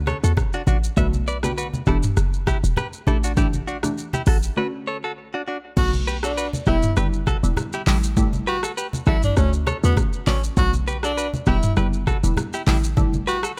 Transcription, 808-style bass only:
0, 0, Header, 1, 2, 480
1, 0, Start_track
1, 0, Key_signature, 2, "minor"
1, 0, Tempo, 600000
1, 777, Time_signature, 4, 2, 24, 8
1, 10876, End_track
2, 0, Start_track
2, 0, Title_t, "808-style bass"
2, 0, Program_c, 0, 38
2, 0, Note_on_c, 0, 38, 107
2, 98, Note_off_c, 0, 38, 0
2, 188, Note_on_c, 0, 40, 91
2, 270, Note_off_c, 0, 40, 0
2, 536, Note_on_c, 0, 33, 99
2, 717, Note_off_c, 0, 33, 0
2, 777, Note_on_c, 0, 35, 113
2, 1358, Note_off_c, 0, 35, 0
2, 1496, Note_on_c, 0, 28, 99
2, 1677, Note_off_c, 0, 28, 0
2, 1736, Note_on_c, 0, 30, 98
2, 2017, Note_off_c, 0, 30, 0
2, 2109, Note_on_c, 0, 28, 94
2, 2190, Note_off_c, 0, 28, 0
2, 2456, Note_on_c, 0, 33, 104
2, 3099, Note_off_c, 0, 33, 0
2, 3415, Note_on_c, 0, 33, 91
2, 3596, Note_off_c, 0, 33, 0
2, 4616, Note_on_c, 0, 35, 114
2, 5198, Note_off_c, 0, 35, 0
2, 5335, Note_on_c, 0, 28, 99
2, 5516, Note_off_c, 0, 28, 0
2, 5575, Note_on_c, 0, 30, 100
2, 5856, Note_off_c, 0, 30, 0
2, 5947, Note_on_c, 0, 28, 92
2, 6029, Note_off_c, 0, 28, 0
2, 6295, Note_on_c, 0, 33, 104
2, 6939, Note_off_c, 0, 33, 0
2, 7255, Note_on_c, 0, 33, 97
2, 7436, Note_off_c, 0, 33, 0
2, 7496, Note_on_c, 0, 38, 108
2, 7777, Note_off_c, 0, 38, 0
2, 7869, Note_on_c, 0, 40, 91
2, 7950, Note_off_c, 0, 40, 0
2, 8217, Note_on_c, 0, 33, 101
2, 8398, Note_off_c, 0, 33, 0
2, 8457, Note_on_c, 0, 35, 118
2, 9038, Note_off_c, 0, 35, 0
2, 9175, Note_on_c, 0, 28, 99
2, 9357, Note_off_c, 0, 28, 0
2, 9417, Note_on_c, 0, 30, 101
2, 9697, Note_off_c, 0, 30, 0
2, 9788, Note_on_c, 0, 28, 96
2, 9870, Note_off_c, 0, 28, 0
2, 10136, Note_on_c, 0, 33, 105
2, 10779, Note_off_c, 0, 33, 0
2, 10876, End_track
0, 0, End_of_file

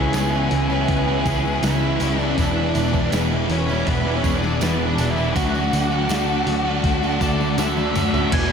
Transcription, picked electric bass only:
0, 0, Header, 1, 2, 480
1, 0, Start_track
1, 0, Tempo, 744417
1, 1535, Time_signature, 4, 2, 24, 8
1, 5495, End_track
2, 0, Start_track
2, 0, Title_t, "Picked electric bass"
2, 0, Program_c, 0, 34
2, 0, Note_on_c, 0, 37, 89
2, 68, Note_off_c, 0, 37, 0
2, 92, Note_on_c, 0, 37, 96
2, 308, Note_off_c, 0, 37, 0
2, 334, Note_on_c, 0, 37, 90
2, 549, Note_off_c, 0, 37, 0
2, 573, Note_on_c, 0, 37, 88
2, 788, Note_off_c, 0, 37, 0
2, 811, Note_on_c, 0, 37, 91
2, 1027, Note_off_c, 0, 37, 0
2, 1056, Note_on_c, 0, 37, 92
2, 1271, Note_off_c, 0, 37, 0
2, 1296, Note_on_c, 0, 37, 83
2, 1511, Note_off_c, 0, 37, 0
2, 1533, Note_on_c, 0, 28, 106
2, 1749, Note_off_c, 0, 28, 0
2, 1776, Note_on_c, 0, 28, 102
2, 1991, Note_off_c, 0, 28, 0
2, 2016, Note_on_c, 0, 28, 104
2, 2231, Note_off_c, 0, 28, 0
2, 2252, Note_on_c, 0, 28, 88
2, 2469, Note_off_c, 0, 28, 0
2, 2496, Note_on_c, 0, 28, 81
2, 2711, Note_off_c, 0, 28, 0
2, 2735, Note_on_c, 0, 28, 93
2, 2950, Note_off_c, 0, 28, 0
2, 2977, Note_on_c, 0, 28, 93
2, 3192, Note_off_c, 0, 28, 0
2, 3216, Note_on_c, 0, 28, 90
2, 3431, Note_off_c, 0, 28, 0
2, 3456, Note_on_c, 0, 38, 104
2, 3670, Note_off_c, 0, 38, 0
2, 3697, Note_on_c, 0, 38, 89
2, 3911, Note_off_c, 0, 38, 0
2, 3936, Note_on_c, 0, 38, 92
2, 4150, Note_off_c, 0, 38, 0
2, 4172, Note_on_c, 0, 38, 86
2, 4387, Note_off_c, 0, 38, 0
2, 4410, Note_on_c, 0, 38, 89
2, 4626, Note_off_c, 0, 38, 0
2, 4650, Note_on_c, 0, 38, 91
2, 4865, Note_off_c, 0, 38, 0
2, 4889, Note_on_c, 0, 38, 93
2, 5104, Note_off_c, 0, 38, 0
2, 5132, Note_on_c, 0, 38, 83
2, 5345, Note_off_c, 0, 38, 0
2, 5369, Note_on_c, 0, 28, 108
2, 5495, Note_off_c, 0, 28, 0
2, 5495, End_track
0, 0, End_of_file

